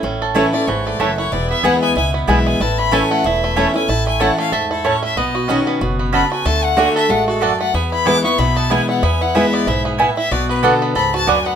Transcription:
Already playing: five-string banjo E4
0.03 upright bass A1, steel-string acoustic guitar A2, five-string banjo C#4
0.22 five-string banjo A4
0.34 steel-string acoustic guitar E3 A3 C#4 E4, mandolin A3 E4 C#5 A5, five-string banjo E4
0.53 five-string banjo A3, steel-string acoustic guitar C#4 E4, fiddle D5
0.67 upright bass G#1, steel-string acoustic guitar G#2, five-string banjo E3, fiddle C#5
0.86 five-string banjo A3, fiddle D5
1.00 upright bass F#1, steel-string acoustic guitar F#2, five-string banjo E3, mandolin A3 E4 C#5 A5, fiddle E5
1.17 five-string banjo E4, fiddle C#5
1.32 upright bass E1, steel-string acoustic guitar E2, five-string banjo E4, fiddle D5
1.50 five-string banjo B3, fiddle E5
1.63 upright bass D2, steel-string acoustic guitar E3 G#3 B3 E4, mandolin B3 E4 B4 G#5, five-string banjo E4, fiddle F#5
1.82 five-string banjo B3, fiddle G#5
1.96 upright bass C#2, steel-string acoustic guitar B2, five-string banjo E4, fiddle G#5
2.14 five-string banjo B3, fiddle B4
2.27 upright bass B1, steel-string acoustic guitar E3 G#3 B3 E4, mandolin B3 E4 B4 G#5, five-string banjo E4, fiddle E5
2.47 five-string banjo E4, fiddle G#5
2.60 upright bass A1, steel-string acoustic guitar A2, five-string banjo E4, fiddle A5
2.78 five-string banjo A3, fiddle B5
2.91 steel-string acoustic guitar E3 A3 C#4 E4, mandolin A3 E4 C#5 A5, five-string banjo A4, fiddle G#5
3.11 five-string banjo A3, fiddle F#5
3.24 upright bass E1, steel-string acoustic guitar E2, five-string banjo E4, fiddle E5
3.44 five-string banjo A3
3.56 steel-string acoustic guitar E3 A3 C#4 E4, mandolin A3 E4 C#5 A5, five-string banjo C#4
3.74 steel-string acoustic guitar C#4 E4, five-string banjo E4, fiddle G#5
3.88 upright bass A1, steel-string acoustic guitar A2, five-string banjo E4, fiddle A5
4.07 five-string banjo A3, fiddle G#5
4.20 steel-string acoustic guitar E3 A3 C#4 E4, mandolin A3 E4 C#5 A5, five-string banjo A4, fiddle F#5
4.38 five-string banjo A3, fiddle F5
4.52 upright bass E2, steel-string acoustic guitar G#2, five-string banjo A4, fiddle E5
4.71 five-string banjo E4, fiddle A4
4.84 steel-string acoustic guitar A2, mandolin A3 E4 C#5 A5, five-string banjo C#4, fiddle C#5
5.03 five-string banjo A3, fiddle E5
5.16 upright bass B1, steel-string acoustic guitar B2, five-string banjo B3, fiddle D#5
5.35 five-string banjo F#4
5.48 steel-string acoustic guitar B2 D#3 C#4 F#4, mandolin C#4 F#4 D#5 B5, five-string banjo C#4
5.67 five-string banjo B3
5.81 upright bass F#1, steel-string acoustic guitar B2, five-string banjo F#4
5.99 five-string banjo B3
6.13 steel-string acoustic guitar C#3, mandolin C#4 F#4 D#5 B5, five-string banjo A4, fiddle B5
6.31 five-string banjo F#4, fiddle G#5
6.45 upright bass D2, steel-string acoustic guitar D3, five-string banjo A3, fiddle A5
6.64 fiddle F#5
6.76 steel-string acoustic guitar D3 A3 D4 F#4, mandolin A3 F#4 D5 F#5, five-string banjo F#4, fiddle G#5
6.95 five-string banjo A4, fiddle E5
7.10 upright bass A1, steel-string acoustic guitar G#3, five-string banjo A3, fiddle F#5
7.28 five-string banjo F#4, fiddle A4
7.41 steel-string acoustic guitar F#2, mandolin A3 F#4 D5 F#5, five-string banjo A4, fiddle D5
7.60 five-string banjo A3, fiddle F#5
7.74 upright bass E2, steel-string acoustic guitar E2, five-string banjo B3, fiddle G#5
7.91 five-string banjo E4, fiddle B5
8.06 steel-string acoustic guitar E3 G#3 B3 E4, mandolin B3 E4 B4 G#5, five-string banjo E4, fiddle D6
8.24 five-string banjo B3, steel-string acoustic guitar B3 E4, fiddle C#6
8.38 upright bass B1, steel-string acoustic guitar B2, five-string banjo E4, fiddle B5
8.56 five-string banjo B3, fiddle A5
8.70 steel-string acoustic guitar E3 G#3 B3 E4, mandolin B3 E4 B4 G#5, five-string banjo E4, fiddle G#5
8.89 five-string banjo E4, fiddle F#5
9.03 upright bass E2, steel-string acoustic guitar E2, five-string banjo B3, fiddle G#5
9.21 five-string banjo E4, fiddle F#5
9.35 steel-string acoustic guitar E3 G#3 B3 E4, mandolin B3 E4 B4 G#5, five-string banjo E4, fiddle E5
9.53 five-string banjo B3, fiddle D5
9.67 upright bass B1, steel-string acoustic guitar G#2, five-string banjo E4, fiddle E5
9.85 five-string banjo B3, fiddle G#4
9.98 steel-string acoustic guitar A2, mandolin B3 E4 B4 G#5, five-string banjo E4, fiddle B4
10.17 five-string banjo E4, fiddle E5
10.31 upright bass B1, steel-string acoustic guitar B2, five-string banjo F#4, fiddle D5
10.49 five-string banjo B3, fiddle B4
10.63 steel-string acoustic guitar D3 B3 D4 F#4, mandolin B3 F#4 D5 F#5, five-string banjo A4
10.82 five-string banjo B3
10.95 upright bass C#2, steel-string acoustic guitar G#2, five-string banjo A4, fiddle B5
11.14 five-string banjo F#4, fiddle A5
11.27 upright bass D2, steel-string acoustic guitar F#2, mandolin B3 F#4 D5 F#5, five-string banjo D4, fiddle G#5
11.46 five-string banjo B3, fiddle F#5

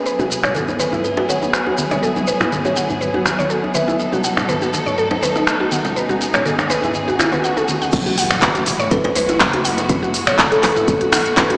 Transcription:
Already playing: string section A3 B3
0.06 string section F#3 E4 G#4, synth pluck B4, closed hi-hat, shekere
0.19 synth pluck F#4, closed hi-hat, djembe tone, low conga, shekere
0.30 open hi-hat, shekere
0.43 synth pluck C#5, finger snap, mid tom, djembe tone, low conga, shekere
0.55 synth pluck A4, closed hi-hat, high conga, shekere
0.68 closed hi-hat, djembe tone, shekere
0.79 synth pluck B4, open hi-hat, djembe slap, high conga, shekere
0.92 synth pluck E4, mid tom, djembe tone, shekere
1.04 kalimba B4, closed hi-hat, shekere
1.17 synth pluck F#4, kalimba B4, closed hi-hat, djembe slap, djembe tone
1.29 kalimba C#5, synth pluck F#5, open hi-hat, djembe slap, high conga, shekere
1.42 closed hi-hat, djembe tone, shekere
1.53 synth pluck B4, finger snap, closed hi-hat, shekere
1.67 synth pluck F#4, djembe tone
1.78 open hi-hat, high conga, shekere
1.91 synth pluck C#5, closed hi-hat, djembe slap, high conga, djembe tone, low conga, shekere
2.03 synth pluck A4, closed hi-hat, shekere
2.16 closed hi-hat, djembe tone, low conga, shekere
2.27 synth pluck B4, open hi-hat, shekere
2.41 synth pluck E4, finger snap, mid tom, djembe tone, low conga, shekere
2.52 closed hi-hat, high conga, shekere
2.65 synth pluck F#4, kalimba C#5, closed hi-hat, djembe tone, shekere
2.76 synth pluck F#5, open hi-hat, djembe slap, high conga, shekere
2.90 mid tom, djembe tone, shekere
3.01 synth pluck B4, closed hi-hat, high conga, shekere
3.14 synth pluck F#4, closed hi-hat, djembe tone
3.26 finger snap, open hi-hat, djembe slap, high conga, shekere
3.39 synth pluck C#5, closed hi-hat, high conga, djembe tone, shekere
3.50 synth pluck A4, closed hi-hat, shekere
3.64 djembe tone
3.74 synth pluck B4, kalimba E5, open hi-hat, high conga, shekere
3.88 synth pluck E4, open hi-hat, djembe tone, shekere
3.99 string section A3 D#4 A4, closed hi-hat, shekere
4.13 synth pluck F#4, closed hi-hat, djembe tone, low conga, shekere
4.24 synth pluck F#5, open hi-hat, shekere
4.37 finger snap, mid tom, djembe tone, low conga, shekere
4.49 synth pluck B4, closed hi-hat, high conga, shekere
4.61 synth pluck F#4, closed hi-hat, djembe tone, shekere
4.73 open hi-hat, djembe slap, high conga, shekere
4.86 synth pluck C#5, mid tom, djembe tone, shekere
4.98 synth pluck A4, closed hi-hat, shekere
5.11 closed hi-hat, djembe slap, djembe tone
5.22 synth pluck B4, open hi-hat, djembe slap, high conga, shekere
5.36 synth pluck D#4, closed hi-hat, djembe tone, shekere
5.47 finger snap, closed hi-hat, shekere
5.60 synth pluck F#4, djembe tone
5.72 synth pluck F#5, open hi-hat, high conga, shekere
5.85 closed hi-hat, djembe slap, high conga, djembe tone, low conga, shekere
5.96 string section C#3 G#4, synth pluck B4, closed hi-hat, shekere
6.09 synth pluck F#4, closed hi-hat, djembe tone, low conga, shekere
6.21 open hi-hat, shekere
6.34 synth pluck C#5, finger snap, closed hi-hat, mid tom, djembe tone, low conga, shekere
6.45 synth pluck A4, closed hi-hat, high conga, shekere
6.58 finger snap, closed hi-hat, djembe tone, shekere
6.70 synth pluck B4, open hi-hat, djembe slap, high conga, shekere
6.83 synth pluck E4, closed hi-hat, mid tom, djembe tone, shekere
6.94 closed hi-hat, swell, high conga, shekere
7.08 synth pluck F#4, closed hi-hat, djembe tone, shekere
7.19 synth pluck E4, finger snap, open hi-hat, djembe slap, high conga, shekere
7.32 synth pluck B4, closed hi-hat, djembe tone, high conga, shekere
7.44 synth pluck F#5, closed hi-hat, shekere
7.57 synth pluck A4, closed hi-hat, djembe tone, shekere
7.68 open hi-hat, high conga, shekere
7.82 synth pluck F#5, open hi-hat, djembe tone, shekere
7.93 detuned saw bass F#1, string section E3 G#3 A3 B3 F#4, kick, closed hi-hat, crash, impact, shekere
8.06 synth pluck F#4, shekere
8.18 synth pluck F#5, open hi-hat, shekere
8.30 finger snap, mid tom, shekere
8.42 synth pluck B4, kick, clap, closed hi-hat, shekere
8.55 synth pluck F#4, closed hi-hat, shekere
8.66 detuned saw bass E1, open hi-hat, djembe slap, shekere
8.79 synth pluck C#5, mid tom, shekere
8.91 synth pluck A4, kalimba B4, kick, closed hi-hat, djembe tone, shekere
9.04 kalimba B4, closed hi-hat, djembe slap
9.15 detuned saw bass B1, synth pluck B4, open hi-hat, djembe slap, shekere
9.29 synth pluck E4, closed hi-hat, djembe tone, shekere
9.40 detuned saw bass F#1, finger snap, kick, clap, closed hi-hat, shekere
9.53 synth pluck F#4, closed hi-hat, djembe tone
9.65 synth pluck F#5, open hi-hat, shekere
9.78 closed hi-hat, djembe slap, shekere
9.89 synth pluck B4, kick, closed hi-hat, shekere
10.03 synth pluck F#4, shekere
10.14 open hi-hat, shekere
10.27 synth pluck C#5, finger snap, mid tom, shekere
10.39 synth pluck A4, kick, clap, closed hi-hat, shekere
10.52 kalimba A4, closed hi-hat, shekere
10.63 detuned saw bass E1, synth pluck B4, kick, clap, open hi-hat, djembe slap, djembe tone, shekere
10.76 synth pluck E4, mid tom, shekere
10.88 kick, closed hi-hat, shekere
11.01 synth pluck F#4, closed hi-hat
11.12 detuned saw bass A1, synth pluck F#5, finger snap, open hi-hat, djembe slap, djembe tone, shekere
11.26 closed hi-hat, shekere
11.37 kalimba E4, synth pluck B4, kick, clap, closed hi-hat, shekere
11.50 kalimba E4, synth pluck F#4, closed hi-hat

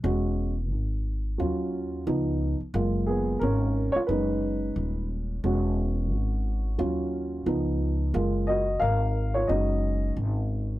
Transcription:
0.03 upright bass E1, upright piano G#3 C#4 F#4
0.71 upright bass G#1
1.38 upright bass D#2, upright piano F#3 C#4 F4
2.06 upright bass C#2, upright piano F3 B3 D#4
2.60 muted upright bass stroke
2.74 upright bass F#1, upright piano G#3 A#3 F4
3.07 upright piano B3 G#4
3.39 upright bass G#1, upright piano C#4 A#4
3.92 upright piano F4 C#5, muted upright bass stroke
4.07 upright bass F#1, upright piano G#3 C#4 D#4 B4
4.76 upright bass D#1
5.44 upright bass E1, upright piano G#3 C#4 F#4
6.12 upright bass G#1
6.78 upright bass D#2, upright piano F#3 C#4 F4
7.46 upright bass C#2, upright piano F3 B3 D#4
8.14 upright bass F#1, upright piano G#3 A#3 F4
8.47 upright piano F#4 D#5
8.80 upright bass G#1, upright piano A#4 F5
9.34 upright piano F4 C#5
9.47 upright bass F#1, upright piano G#3 C#4 D#4 F#4 D#5
10.17 upright bass G#1

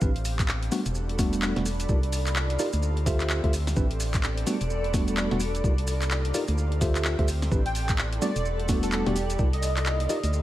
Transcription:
0.01 fm bass A1, analog synth pad B3 C4 D4 G4, tine electric piano C4 D4 E4 G4 B4, ambient pad A4, kick, maracas
0.16 closed hi-hat
0.21 ambient pad D5
0.25 open hi-hat, maracas
0.35 ambient pad B5
0.39 kick, clap, closed hi-hat, maracas
0.48 clap, maracas
0.63 closed hi-hat
0.72 analog synth pad G3 A3 F#4, tine electric piano G3 A3 B3 D4 F#4, snare, open hi-hat, maracas
0.86 fm bass E1, closed hi-hat, maracas
0.95 maracas
1.09 closed hi-hat
1.19 tine electric piano G3 A3 B3 D4 F#4, kick, snare, open hi-hat, maracas
1.33 closed hi-hat, maracas
1.42 clap, maracas
1.56 fm bass E1, tine electric piano G3 A3 B3 D4 F#4, snare, closed hi-hat
1.66 open hi-hat, maracas
1.80 closed hi-hat, maracas
1.89 fm bass C2, analog synth pad A#3 D#4 F4, tine electric piano D#4 F4 G4 A#4 D5, ambient pad G4, kick, maracas
2.03 closed hi-hat
2.12 open hi-hat, maracas
2.27 clap, closed hi-hat, maracas
2.36 clap, maracas
2.50 closed hi-hat
2.59 tine electric piano D#4 F4 G4 A#4 D5, open hi-hat, maracas
2.73 fm bass D2, closed hi-hat, maracas
2.83 analog synth pad C4 G4 E5, ambient pad A4, maracas
2.97 closed hi-hat
3.06 tine electric piano F4 G4 A4 C5 E5, ambient pad D5, kick, snare, open hi-hat, maracas
3.20 clap, closed hi-hat, maracas
3.30 clap, maracas
3.44 fm bass D2, tine electric piano F4 G4 A4 C5 E5, kick, closed hi-hat
3.53 open hi-hat, maracas
3.67 snare, open hi-hat, maracas
3.76 fm bass A1, analog synth pad B3 D4 G4, tine electric piano C4 D4 E4 G4 B4, kick, maracas
3.91 closed hi-hat
4.00 open hi-hat, maracas
4.10 ambient pad B5, maracas
4.14 kick, clap, closed hi-hat
4.23 clap, maracas
4.38 closed hi-hat
4.47 analog synth pad G3 A3 D4 F#4, tine electric piano G3 A3 B3 D4 F#4, snare, open hi-hat, maracas
4.61 fm bass E1, closed hi-hat, maracas
4.70 maracas
4.84 closed hi-hat
4.94 tine electric piano G3 A3 B3 D4 F#4, kick, snare, open hi-hat, maracas
5.08 closed hi-hat, maracas
5.17 clap, maracas
5.31 fm bass E1, tine electric piano G3 A3 B3 D4 F#4, snare, closed hi-hat
5.40 open hi-hat, maracas
5.55 closed hi-hat, maracas
5.64 fm bass C2, analog synth pad A#3 D#4 F4, tine electric piano D#4 F4 G4 A#4 D5, ambient pad G4, kick, maracas
5.78 closed hi-hat
5.87 open hi-hat, maracas
6.02 clap, closed hi-hat, maracas
6.11 clap, maracas
6.25 closed hi-hat
6.34 tine electric piano D#4 F4 G4 A#4 D5, open hi-hat, maracas
6.48 fm bass D2, closed hi-hat, maracas
6.57 analog synth pad C4 G4 E5, ambient pad A4, maracas
6.66 ambient pad D5
6.72 ambient pad C6, closed hi-hat
6.81 tine electric piano F4 G4 A4 C5 E5, kick, snare, open hi-hat, maracas
6.95 clap, closed hi-hat, maracas
7.05 clap, maracas
7.19 fm bass D2, tine electric piano F4 G4 A4 C5 E5, kick, closed hi-hat
7.28 open hi-hat, maracas
7.42 snare, open hi-hat, maracas
7.52 fm bass A1, analog synth pad B3 E4, tine electric piano C4 D4 E4 G4 B4, kick, maracas
7.66 digital synth lead G5, closed hi-hat
7.75 digital synth lead G5, open hi-hat, maracas
7.89 kick, clap, closed hi-hat, maracas
7.98 clap, maracas
8.13 closed hi-hat
8.22 analog synth pad G3 A3 F#5, tine electric piano G3 A3 B3 D4 F#4, digital synth lead D5, snare, open hi-hat, maracas
8.36 fm bass E1, closed hi-hat, maracas
8.45 maracas
8.60 closed hi-hat
8.69 tine electric piano G3 A3 B3 D4 F#4, kick, snare, open hi-hat, maracas
8.83 digital synth lead A4, closed hi-hat, maracas
8.92 digital synth lead A4, clap, maracas
9.06 fm bass E1, tine electric piano G3 A3 B3 D4 F#4, digital synth lead G4, snare, closed hi-hat
9.16 open hi-hat, maracas
9.30 closed hi-hat, maracas
9.39 fm bass C2, analog synth pad A#3 D#4 F4, tine electric piano D#4 F4 G4 A#4 D5, ambient pad G4, kick, maracas
9.53 digital synth lead D#5, closed hi-hat
9.63 open hi-hat, maracas
9.77 clap, closed hi-hat, maracas
9.86 clap, maracas
10.00 closed hi-hat
10.09 tine electric piano D#4 F4 G4 A#4 D5, digital synth lead D#5, open hi-hat, maracas
10.24 fm bass D2, digital synth lead D#5, closed hi-hat, maracas
10.33 analog synth pad C4 G4 E5, maracas

